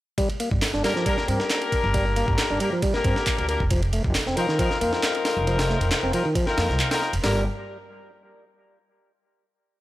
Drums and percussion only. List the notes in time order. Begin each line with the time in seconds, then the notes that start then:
0.18 kick, ride
0.30 ride
0.40 ride
0.51 kick
0.62 snare, clap, open hi-hat
0.73 snare
0.84 snare, open hi-hat
0.96 snare
1.06 kick, ride
1.18 snare
1.28 ride
1.40 snare
1.50 snare, clap, ride
1.62 ride
1.72 kick, ride
1.94 kick, ride
2.16 ride
2.28 kick
2.38 snare, clap, ride
2.60 ride
2.82 kick, ride
2.94 snare
3.04 kick, ride
3.16 snare
3.27 kick, clap, ride
3.38 ride
3.49 ride
3.60 kick
3.71 kick, ride
3.83 ride
3.93 ride
4.04 kick
4.15 snare, clap, open hi-hat
4.27 snare
4.37 ride
4.49 snare
4.59 kick, ride
4.71 snare
4.81 ride
4.93 snare
5.03 snare, clap, ride
5.15 ride
5.25 snare, open hi-hat
5.47 ride
5.59 snare, open hi-hat
5.70 snare
5.81 ride
5.91 snare, clap, ride
6.13 ride
6.35 kick, ride
6.47 snare
6.58 snare, open hi-hat
6.69 snare
6.79 clap, ride
6.91 snare, open hi-hat
7.02 snare
7.13 ride
7.24 snare, open hi-hat